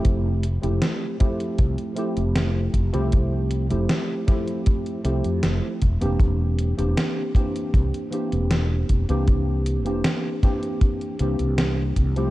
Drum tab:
HH |x-xxx-xxxxxxx-xx|x-xxx-xxxxxxx-xx|x-xxx-xxxxxxx-xx|x-xxx-xxxxxxx-xx|
SD |----o-------o---|----o-o-----o---|----o-------o---|----o-o-----o---|
BD |o-----o-o-----o-|o-----o-o-----o-|o-----o-o-----o-|o-----o-o-----o-|